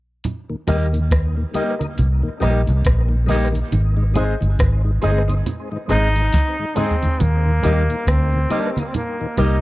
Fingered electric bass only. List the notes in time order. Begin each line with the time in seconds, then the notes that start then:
0.69 D#2
1.99 C2
2.43 A#1
2.69 C2
2.86 A#1
3.73 G#1
4.42 G1
4.60 G#1
5.04 G1
5.91 G#1
7.21 D#2
7.65 D#2
8.08 D2
9.39 C2